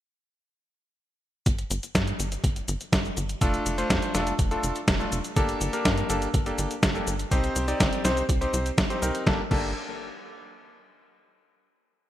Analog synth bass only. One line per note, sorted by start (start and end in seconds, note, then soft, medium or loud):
1.46 1.64 G1 loud
1.70 1.79 G1 loud
1.95 2.13 G2 medium
2.19 2.37 G1 medium
2.44 2.62 G1 medium
2.68 2.77 G1 loud
2.93 3.10 G1 loud
3.17 3.35 G1 medium
3.41 3.59 F1 medium
3.66 3.84 F1 medium
3.90 3.99 F2 loud
4.15 4.32 F1 medium
4.39 4.57 F1 medium
4.63 4.72 F1 medium
4.88 5.06 F1 medium
5.12 5.21 F1 medium
5.36 5.54 G1 loud
5.61 5.70 G1 loud
5.85 6.03 G2 medium
6.10 6.27 G1 medium
6.34 6.52 G1 medium
6.58 6.67 G1 loud
6.83 7.01 G1 loud
7.07 7.25 G1 medium
7.31 7.49 C2 medium
7.56 7.74 C2 medium
7.80 7.89 G1 loud
8.05 8.23 C2 medium
8.29 8.47 C2 medium
8.53 8.71 C2 loud
8.78 8.87 G1 loud
9.02 9.11 C2 medium
9.27 9.40 G1 medium
9.51 9.74 G1 loud